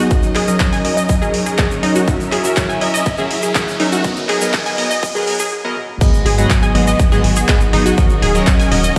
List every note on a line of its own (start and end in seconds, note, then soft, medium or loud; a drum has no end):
0.00 5.48 F#3 medium
0.00 2.04 D#4 medium
0.00 0.10 F#4 loud
0.00 2.04 D#5 medium
0.00 riser medium
0.10 0.45 F#3 medium
0.10 0.45 C#4 medium
0.10 4.00 C#4 medium
0.10 0.45 A#4 medium
0.10 5.48 A#4 medium
0.10 0.45 D#5 medium
0.10 kick loud
0.10 closed hi-hat medium
0.10 shaker medium
0.23 closed hi-hat soft
0.23 shaker soft
0.35 0.44 G#4 loud
0.35 clap medium
0.35 open hi-hat loud
0.48 0.82 F#3 medium
0.48 0.82 C#4 medium
0.48 0.82 A#4 medium
0.48 0.82 D#5 loud
0.48 closed hi-hat medium
0.48 shaker medium
0.60 kick loud
0.60 clap loud
0.60 closed hi-hat medium
0.60 shaker medium
0.73 0.81 G#5 loud
0.73 open hi-hat medium
0.73 shaker soft
0.84 0.91 F#3 medium
0.84 0.91 C#4 medium
0.84 0.91 A#4 medium
0.84 0.91 D#5 loud
0.84 0.93 D#5 medium
0.84 open hi-hat loud
0.97 1.09 D#5 loud
0.97 closed hi-hat medium
0.97 shaker medium
1.09 kick loud
1.09 closed hi-hat medium
1.09 shaker medium
1.22 1.32 F#3 loud
1.22 1.32 C#4 medium
1.22 1.30 G#4 loud
1.22 1.32 A#4 medium
1.22 1.32 D#5 loud
1.22 shaker soft
1.34 open hi-hat loud
1.46 1.54 G#4 medium
1.46 closed hi-hat medium
1.46 shaker medium
1.58 1.65 F#3 loud
1.58 1.65 C#4 medium
1.58 1.67 G#4 medium
1.58 1.65 A#4 medium
1.58 1.65 D#5 loud
1.58 kick loud
1.58 clap loud
1.58 closed hi-hat medium
1.58 shaker medium
1.71 shaker soft
1.83 2.05 F#3 loud
1.83 2.05 C#4 medium
1.83 1.91 D#4 loud
1.83 2.05 A#4 medium
1.83 2.05 D#5 loud
1.83 open hi-hat loud
1.95 2.07 F#4 loud
1.95 closed hi-hat medium
1.95 shaker medium
2.08 2.42 F#3 medium
2.08 2.42 C#4 medium
2.08 4.03 E4 medium
2.08 2.42 A#4 medium
2.08 2.42 E5 medium
2.08 4.03 E5 medium
2.08 kick loud
2.08 closed hi-hat medium
2.08 shaker medium
2.20 closed hi-hat soft
2.20 shaker soft
2.32 2.41 G#4 loud
2.32 clap medium
2.32 open hi-hat loud
2.44 2.78 F#3 medium
2.44 2.79 C#4 medium
2.44 2.79 A#4 medium
2.44 2.79 E5 loud
2.44 closed hi-hat medium
2.44 shaker medium
2.56 kick loud
2.56 clap loud
2.56 closed hi-hat medium
2.56 shaker medium
2.69 2.77 G#5 loud
2.69 shaker soft
2.81 2.88 F#3 medium
2.81 2.88 C#4 medium
2.81 2.88 A#4 medium
2.81 2.90 D#5 medium
2.81 2.88 E5 loud
2.81 open hi-hat loud
2.94 3.05 D#5 loud
2.94 closed hi-hat soft
2.94 shaker medium
3.06 kick loud
3.06 closed hi-hat medium
3.06 shaker medium
3.18 3.29 F#3 loud
3.18 3.29 C#4 medium
3.18 3.27 G#4 loud
3.18 3.29 A#4 medium
3.18 3.29 E5 loud
3.18 shaker soft
3.31 open hi-hat loud
3.43 3.51 G#4 medium
3.43 closed hi-hat medium
3.43 shaker medium
3.55 3.62 F#3 loud
3.55 3.62 C#4 medium
3.55 3.64 G#4 medium
3.55 3.62 A#4 medium
3.55 3.62 E5 loud
3.55 kick loud
3.55 clap loud
3.55 closed hi-hat medium
3.55 shaker medium
3.68 shaker soft
3.80 4.01 F#3 loud
3.80 4.01 C#4 medium
3.80 3.88 D#4 loud
3.80 4.01 A#4 medium
3.80 4.01 E5 loud
3.80 open hi-hat loud
3.92 4.04 F#4 loud
3.92 closed hi-hat soft
3.92 shaker medium
4.04 4.39 F#3 medium
4.04 4.39 B3 medium
4.04 5.51 B3 medium
4.04 5.50 D#4 medium
4.04 4.39 A#4 medium
4.04 4.39 D#5 medium
4.04 5.50 D#5 medium
4.04 kick loud
4.04 closed hi-hat medium
4.04 shaker medium
4.16 closed hi-hat soft
4.16 shaker soft
4.29 4.37 G#4 loud
4.29 clap medium
4.29 open hi-hat loud
4.41 4.75 F#3 medium
4.41 4.75 B3 medium
4.41 4.75 A#4 medium
4.41 4.75 D#5 loud
4.41 closed hi-hat soft
4.41 shaker medium
4.53 kick loud
4.53 clap loud
4.53 closed hi-hat medium
4.53 shaker medium
4.66 4.74 G#5 medium
4.66 open hi-hat medium
4.66 shaker soft
4.78 4.85 F#3 medium
4.78 4.85 B3 medium
4.78 4.85 A#4 medium
4.78 4.85 D#5 loud
4.78 4.87 D#5 medium
4.78 open hi-hat loud
4.91 5.02 D#5 loud
4.91 closed hi-hat soft
4.91 shaker medium
5.03 kick loud
5.03 closed hi-hat medium
5.03 shaker medium
5.15 5.25 F#3 loud
5.15 5.25 B3 medium
5.15 5.23 G#4 loud
5.15 5.25 A#4 medium
5.15 5.25 D#5 loud
5.15 closed hi-hat soft
5.15 shaker soft
5.27 5.34 F#3 medium
5.27 5.34 B3 medium
5.27 5.34 A#4 medium
5.27 5.34 G#5 medium
5.27 open hi-hat loud
5.39 5.48 G#4 medium
5.39 closed hi-hat medium
5.39 shaker medium
5.64 5.75 F#3 medium
5.64 5.75 B3 medium
5.64 5.75 A#4 medium
5.64 5.75 D#5 loud
5.64 high tom medium
5.77 mid tom medium
5.89 mid tom medium
6.01 6.35 G#2 medium
6.01 8.99 D#3 medium
6.01 8.99 F#3 medium
6.01 6.35 F#3 medium
6.01 7.96 G#3 medium
6.01 7.96 B3 medium
6.01 6.35 B3 medium
6.01 8.99 F#4 medium
6.01 6.35 G#4 medium
6.01 6.35 D#5 medium
6.01 kick loud
6.01 closed hi-hat medium
6.01 crash loud
6.01 shaker medium
6.14 shaker soft
6.26 6.46 G#1 loud
6.26 6.34 G#4 loud
6.26 open hi-hat loud
6.38 6.72 G#2 medium
6.38 6.72 F#3 medium
6.38 6.72 B3 medium
6.38 6.72 G#4 medium
6.38 6.72 D#5 loud
6.38 closed hi-hat medium
6.38 shaker medium
6.50 kick loud
6.50 clap loud
6.50 closed hi-hat medium
6.50 shaker medium
6.63 6.71 G#5 loud
6.63 closed hi-hat soft
6.63 shaker soft
6.75 6.95 G#1 medium
6.75 6.82 G#2 medium
6.75 6.82 F#3 medium
6.75 6.82 B3 medium
6.75 6.82 G#4 medium
6.75 6.82 D#5 loud
6.75 6.83 D#5 medium
6.75 open hi-hat loud
6.87 6.99 D#5 loud
6.87 closed hi-hat medium
6.87 shaker medium
6.99 kick loud
6.99 closed hi-hat medium
6.99 shaker medium
7.12 7.22 G#2 loud
7.12 7.22 F#3 medium
7.12 7.22 B3 medium
7.12 7.22 G#4 medium
7.12 7.20 G#4 loud
7.12 7.22 D#5 loud
7.12 closed hi-hat soft
7.12 shaker soft
7.24 7.44 G#1 medium
7.24 open hi-hat loud
7.36 7.45 G#4 medium
7.36 closed hi-hat medium
7.36 shaker medium
7.48 7.55 G#2 loud
7.48 7.55 F#3 medium
7.48 7.55 B3 medium
7.48 7.57 G#4 medium
7.48 7.55 G#4 medium
7.48 7.55 D#5 loud
7.48 kick loud
7.48 clap loud
7.48 closed hi-hat medium
7.48 shaker medium
7.60 closed hi-hat soft
7.60 shaker soft
7.73 7.94 G#1 medium
7.73 7.95 F#3 loud
7.73 7.95 B3 medium
7.73 7.82 D#4 loud
7.73 7.95 G#4 medium
7.73 7.95 D#5 loud
7.73 open hi-hat loud
7.86 7.97 F#4 loud
7.86 closed hi-hat medium
7.86 shaker medium
7.98 8.32 F#3 medium
7.98 8.32 C#4 medium
7.98 8.99 C#4 medium
7.98 8.32 A#4 medium
7.98 8.99 A#4 medium
7.98 8.32 D#5 medium
7.98 kick loud
7.98 closed hi-hat medium
7.98 shaker medium
8.10 shaker soft
8.22 8.43 D#1 loud
8.22 8.31 G#4 loud
8.22 open hi-hat loud
8.35 8.69 F#3 medium
8.35 8.69 C#4 medium
8.35 8.69 A#4 medium
8.35 8.69 D#5 loud
8.35 closed hi-hat medium
8.35 shaker medium
8.47 kick loud
8.47 clap loud
8.47 closed hi-hat medium
8.47 shaker medium
8.59 8.68 G#5 loud
8.59 open hi-hat medium
8.59 shaker soft
8.71 8.92 D#1 medium
8.71 8.78 F#3 medium
8.71 8.78 C#4 medium
8.71 8.78 A#4 medium
8.71 8.80 D#5 medium
8.71 8.78 D#5 loud
8.71 open hi-hat loud
8.84 8.96 D#5 loud
8.84 closed hi-hat medium
8.84 shaker medium